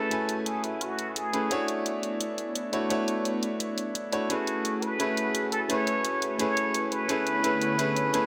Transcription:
Already playing: A3 C#4 E4 F#4 G#4 A4 B4 G#5
0.10 A3 C#4 E4 B4 G#5, closed hi-hat
0.29 closed hi-hat
0.46 G#4, closed hi-hat
0.64 E4, closed hi-hat
0.81 F#4, closed hi-hat
0.99 closed hi-hat
1.16 G#4, closed hi-hat
1.33 A3 C#4 E4 G#4 B4, closed hi-hat
1.50 A3 B3 D4 E4 F#4 C#5, closed hi-hat
1.68 closed hi-hat
1.86 closed hi-hat
2.03 closed hi-hat
2.21 closed hi-hat
2.38 closed hi-hat
2.55 closed hi-hat
2.72 A3 D4 E4 F#4 C#5, closed hi-hat
2.89 A3 D4 E4 F#4 C#5, closed hi-hat
3.08 closed hi-hat
3.25 closed hi-hat
3.43 closed hi-hat
3.60 closed hi-hat
3.78 closed hi-hat
3.95 closed hi-hat
4.12 A3 D4 E4 F#4 C#5, closed hi-hat
4.29 A3 C#4 E4 F#4 G#4 B4, closed hi-hat
4.47 closed hi-hat
4.65 closed hi-hat
4.82 B4, closed hi-hat
4.99 A3 C#4 E4 G#4 B4, closed hi-hat
5.17 closed hi-hat
5.35 closed hi-hat
5.52 A4, closed hi-hat
5.69 A3 C#4 E4 G#4 B4 C#5, closed hi-hat
5.87 closed hi-hat
6.05 closed hi-hat
6.22 closed hi-hat
6.38 A3 C#4 E4 G#4 B4 C#5, closed hi-hat
6.57 closed hi-hat
6.74 closed hi-hat
6.92 B4, closed hi-hat
7.08 D3 A3 B3 C#4 E4 G#4 B4 C#5, closed hi-hat
7.27 closed hi-hat
7.43 A3 C#4 E4 G#4 B4, closed hi-hat
7.61 closed hi-hat
7.78 A3 C#4 E4 G#4 B4, closed hi-hat
7.96 closed hi-hat
8.13 A3 C#4 E4 G#4 B4, closed hi-hat

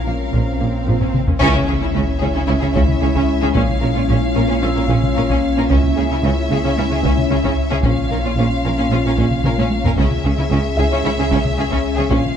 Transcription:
Already playing: A#1 A#3 C#4 F4 F#4 A#4 C#5 F5 D#6, swell
0.06 A#1 A#2 A#3 F5
0.33 A#1 A#2 F3, taiko
0.59 A#1 A#2 A#3
0.87 A#1 A#2 F3, taiko low-mid
1.00 A#2 C#4, taiko low-mid
1.14 taiko mid
1.27 A#2 C#4, taiko low
1.39 C#2 C#3 G#3 C#4 E4 C#5 E5, taiko, impact
1.55 taiko mid
1.66 C#2 C#3 C#4 G#4
1.80 C#3 C#4 E4
1.94 C#2 C#3 C#4
2.20 C#2 C#3 C#4 G#4 C#5
2.35 C#3 C#4
2.48 C#2 C#3 C#4 E4
2.60 C#3 C#4 G#4
2.74 C#2 C#3 C#4, taiko
2.89 taiko mid
3.01 C#2 C#3 C#4 G#4
3.15 C#3 C#4, taiko
3.41 C#3 C#4 G#4
3.53 A#1 A#2 A#3 C#4 F4 F5, taiko
3.69 taiko mid
3.81 A#1 A#2 C#4 A#4
3.95 A#2 C#4 F4
4.08 A#1 A#2 C#4
4.35 A#1 A#2 C#4 A#4
4.49 A#2 C#4
4.61 A#1 A#2 C#4 F4 E6
4.75 A#2 C#4 A#4
4.89 A#1 A#2 C#4, taiko
5.03 taiko mid
5.16 A#1 A#2 C#4 A#4
5.30 A#2 C#4, taiko
5.57 A#2 C#4 A#4
5.69 C#2 C#3 G#3 C#4 E4 E5, taiko
5.83 taiko mid
5.95 C#2 C#3 C#4 G#4 G#5
6.10 C#3 C#4 E4
6.23 C#2 C#3 C#4
6.49 C#2 C#3 C#4 G#4
6.64 C#3 C#4
6.76 C#2 C#3 C#4
6.81 E4
6.91 C#3 C#4 G#4
7.02 C#2 C#3 C#4, taiko
7.07 C#4
7.17 taiko mid
7.30 C#2 C#3 C#4 G#4
7.44 C#3 C#4, taiko
7.71 C#3 C#4 G#4
7.83 A#1 A#2 A#3 C#4 F4 C#5 F5, taiko
7.98 taiko mid
8.10 A#1 A#2 C#4 A#4
8.25 A#2 C#4 F4
8.37 A#1 A#2 C#4
8.64 A#1 A#2 C#4 A#4
8.78 A#2 C#4
8.90 A#1 A#2 C#4 F4
9.05 A#2 C#4 A#4
9.18 A#1 A#2 C#4, taiko
9.31 taiko mid
9.44 A#1 A#2 C#4 A#4, taiko mid
9.58 A#2 C#4, taiko high
9.71 taiko high
9.84 A#2 C#4 A#4, taiko low
9.97 C#2 C#3 G#3 C#4 G#4 E5, taiko
10.11 taiko mid
10.24 C#2 C#3 C#4 G#4
10.37 C#3 C#4 E4
10.50 C#2 C#3 C#4
10.77 C#2 C#3 C#4 E4 G#4 E5
10.91 C#3 C#4
11.04 C#2 C#3 C#4 E4
11.18 C#3 C#4 G#4
11.31 C#2 C#3 C#4, taiko
11.45 taiko mid
11.57 C#2 C#3 C#4 G#4
11.71 C#3 C#4, taiko
11.96 C#3 C#4 G#4
12.10 A#1 A#2 C#4 F4 F5, taiko
12.26 taiko mid

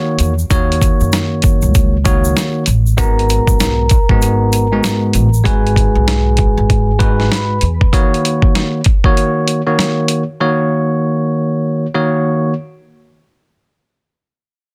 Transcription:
Already playing: D#3 A#3 F#4 C#5
0.19 E2, closed hi-hat, shaker
0.39 shaker
0.50 D#2 D#3 A#3 F#4 C#5, kick, closed hi-hat, shaker
0.72 closed hi-hat
0.82 kick, closed hi-hat, shaker
1.01 F#2, shaker
1.12 snare, closed hi-hat, shaker
1.42 kick, closed hi-hat, shaker
1.62 C#2, shaker
1.74 kick, closed hi-hat, shaker
2.05 D#3 A#3 F#4 C#5, kick, closed hi-hat, shaker
2.24 shaker
2.37 snare, closed hi-hat, shaker
2.66 A1, closed hi-hat, shaker
2.86 shaker
2.97 G#1 G#2 G#3 B3 F#4 A#4 A#5, kick, closed hi-hat, shaker
3.19 closed hi-hat
3.29 closed hi-hat, shaker
3.47 B1, kick, shaker
3.60 snare, closed hi-hat, shaker
3.89 kick, closed hi-hat, shaker
4.09 G#1 G#2 G#3 B3 F#4, kick
4.22 closed hi-hat, shaker
4.52 closed hi-hat, shaker
4.72 G#2 G#3 B3 F#4
4.84 snare, closed hi-hat, shaker
5.13 A1, closed hi-hat, shaker
5.34 shaker
5.44 G#1 G#2 G#3 F#4 G#4 B4 G#5, kick, closed hi-hat
5.67 closed hi-hat
5.76 kick, closed hi-hat
5.95 B1
6.08 snare, closed hi-hat
6.37 kick, closed hi-hat
6.58 G#1
6.70 kick, closed hi-hat
6.98 G#2 G#3 F#4 B4, kick, closed hi-hat
7.20 snare
7.32 B4 B5, snare, closed hi-hat
7.61 E2, closed hi-hat
7.81 kick
7.93 D#3 A#3 F#4 C#5, kick, closed hi-hat
8.14 closed hi-hat
8.25 closed hi-hat
8.42 kick
8.55 snare, closed hi-hat
8.84 kick, closed hi-hat
9.04 D#3 A#3 F#4 C#5, kick
9.17 closed hi-hat
9.48 closed hi-hat
9.66 D#3 A#3 F#4 C#5
9.79 snare, closed hi-hat
10.08 closed hi-hat
10.40 D#3 A#3 F#4 C#5
11.94 D#3 A#3 F#4 C#5

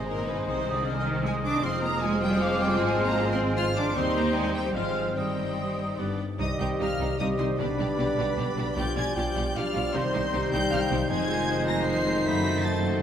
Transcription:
Already playing: G#1 G#2 D#3 G#3 C4 D#4 G#4 C5 D#5
0.08 A#2 G#4 A#4 C6
0.28 B2 D#4 B4
0.46 C2 C3 C5 D#6
0.66 C4
0.73 D3 D5
0.85 G#4 F6
0.99 D#3 D#5
1.06 C5
1.24 G#3 G#4 G#5 D#6
1.44 D4 D#4 D6
1.62 F1 F2 F3 G#3 C4 F4 G#4 C5 F5 C6
1.83 A#3 C4 A#5
2.02 G#3 G#4 G#5
2.21 G3 C5 G5
2.40 F3 G#4 F5 D6
2.60 G3 F4 G5
2.79 G#1 G#2 G#3 G#5 C6
2.99 C4
3.05 A#3 A#5
3.19 C5
3.31 C4 C6
3.38 F4
3.57 F4 C5 C6 F6
3.76 D4 D6
3.96 D#2 D#3 G3 C4 D#4 G4 C5 G5 C6
4.16 A#3 C4 A#5
4.35 G#3 C5 G#5
4.54 G3 G4 G5
4.74 G#1 G#2 F3 G#3 C4 F4 C5 F5 F6
4.96 F4 C5
5.15 G1 G2 D#3 G3 C4 D#4 C5 D#5 G5 D#6
5.38 C4
5.59 C5
5.79 D#4
5.98 G1 G2 D3 G3 B3 D4 B4 D5
6.20 D4 D5
6.39 C2 C3 D#3 G3 C4 D#4 G4 C5 D#5 D#6
6.59 C2 G3 C4 D#4 C5 G5 G6
6.79 C2 G3 D#4 C5 F5 F6
6.99 C2 G3 D#4 C5
7.18 C2 D#3 G3 C4 D#4 G4 C5 D#5 D#6
7.38 C2 G3 D#4 C5 C6
7.58 B1 B2 D3 G3 D4 G4 B4 D5 B5
7.78 B1 B2 G3 D4 G4 D5
7.96 B1 B2 G3 B3 D4 G4 D5
8.16 B1 B2 G3 D4 G4 D5
8.37 B1 B2 G3 D4 G4 D5
8.56 B1 B2 G3 B3 D4 G4 D5
8.76 B1 B2 F3 G3 D4 F4 G4 D5 G5 G6
8.96 B1 B2 G3 D4 F4 G4 D5 G#5 G#6
9.15 B1 B2 F3 G3 D4 F4 G4 D5 G5 G6
9.35 B1 B2 G3 F4 G4 D5
9.54 B1 B2 F3 G3 D4 F4 G4 D5 F5 F6
9.74 B1 B2 G3 B3 F4 G4 D5
9.94 C2 C3 D#3 G3 C4 D#4 G4 C5 C6
10.14 C2 C3 G3 C4 D#4 G4 C5
10.33 C2 C3 G3 D#4 G4 C5
10.52 C2 C3 G3 D#4 G4 C5 G5 G6
10.70 C2 C3 G3 D#4 G4 C5 F5 F6
10.80 G5 G6
10.91 C2 C3 G3 D#4 G4 C5
11.09 F1 F2 D#3 F3 G#3 C4 D#4 F4 G#4 C5 G#5 G#6
11.29 G#3 C4 F4 D#5
11.47 F3 D#4 G#4 C5
11.67 G#3 C4 F4 G#4 D#5 A#5 A#6
11.86 F3 D#4 G#4 C5 C6 C7
12.05 C3 G#3 C4 F4 D#5
12.25 F#1 F#2 A3 D#4 F#4 C5 B5 B6
12.44 C4 F#4 A4 D#5
12.63 A3 D#4 F#4 C5 A5 A6
12.82 C4 F#4 A4 D#5

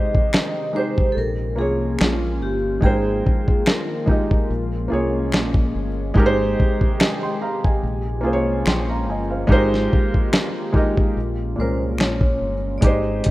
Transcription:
Already playing: C3 D#3 G#3 D#4 G4 C5 D#5
0.15 kick
0.33 finger snap, snare
0.73 G#3 D#4 G4 C5
0.78 C5
0.98 kick
1.12 F3 A#3 C#4 F4 A4
1.17 A#1 A#4
1.56 C2 A#3 F4 G#4
1.61 C#5
1.99 A#1, finger snap
2.01 F4, finger snap, snare
2.42 G1 G4
2.81 G#1 D#3 F3 G#3 A#3 D#4 G#4 G5, kick
2.85 A#4 C5
3.27 kick
3.48 kick
3.66 A#4, finger snap, snare
4.06 G#3 D#4 G4, kick
4.10 A#4 D#5
4.31 kick
4.49 A#1 F3 A#3 C#4
4.88 A#3 F4 G#4
4.92 C2 C#5
5.32 A#1, finger snap, snare
5.54 kick
5.75 G1
6.14 G#1 C3 D#3 G#3 D#4 G4, kick
6.19 A#4
6.26 C5
6.60 kick
6.81 kick
7.00 D#5 G#5, finger snap, snare
7.23 G5 C6
7.41 F5 A#5
7.64 D#5 G#5, kick
7.82 A#1 F3 A#3 C#4 F4
8.21 C2 A#3 F4 G#4
8.26 C5
8.33 C#5
8.66 A#1 G5 C6, finger snap, snare
8.89 F5 A#5
9.08 G1 D#5 G#5
9.31 C5 F5
9.47 G#1 D#3 G#3 D#4 G4, kick
9.51 A#4 C5
9.74 snare
9.93 kick
10.14 kick
10.33 finger snap, snare
10.72 G#3 D#4 G4 A#4, kick
10.77 D#5
10.97 kick
11.15 A#1 F3 C#4
11.56 C2 A#2 G#3 C#4
11.60 A#4 C5
11.98 A#1, finger snap
12.00 C#5, finger snap, snare
12.21 kick
12.41 G1
12.78 G#3 C4 D5
12.82 G#1 D#3 D#4 G4 D#5, kick, closed hi-hat
12.86 C5
13.24 kick, closed hi-hat

